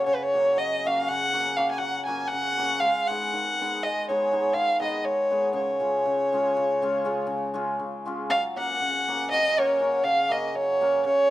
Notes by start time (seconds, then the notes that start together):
Already playing: F#3
0.06 C#3 C#5
0.15 B4
0.23 C#5
0.34 F#3 A#3 C#4 F#4
0.56 F#3 D#5
0.85 F#3 A#3 C#4 F#4 F5
1.09 C#3 F#5
1.33 F#3 A#3 C#4 F#4
1.57 F#3 A#3 C#4 F#4 F5
1.71 G#5
1.78 F#3 F#5
2.05 F#3 A#3 C#4 F#4 G#5
2.28 C#3 F#5
2.57 F#3 A#3 C#4 F#4
2.80 G#3 F5
3.07 G#3 B3 D#4 G#4 F#5
3.33 D#3
3.61 G#3 B3 D#4 G#4
3.83 G#3 D#5
4.08 G#3 B3 D#4 G#4 C#5
4.32 G#3 B3 D#4 G#4
4.53 D#3 F5
4.79 G#3 B3 D#4 G#4 D#5
5.03 G#3 C#5
5.30 G#3 B3 D#4 G#4
5.53 C#3 C#5
5.80 G#3 C#4 F4 G#4
6.06 C#3
6.32 G#3 C#4 F4 G#4
6.57 C#3
6.82 G#3 C#4 F4 G#4
7.05 G#3 C#4 F4 G#4
7.27 C#3
7.54 G#3 C#4 F4 G#4
7.79 C#3
8.05 G#3 C#4 F4 G#4
8.30 F#3 F5
8.56 A#3 C#4 F#4 A#4 F#5
8.80 C#3
9.08 A#3 C#4 F#4 A#4
9.31 F#3 D#5
9.57 A#3 C#4 F#4 A#4 C#5
9.79 A#3 C#4 F#4 A#4
10.03 C#3 F5
10.29 A#3 C#4 F#4 A#4 D#5
10.47 D#5
10.54 F#3 C#5
10.81 A#3 C#4 F#4 A#4
11.05 C#3 C#5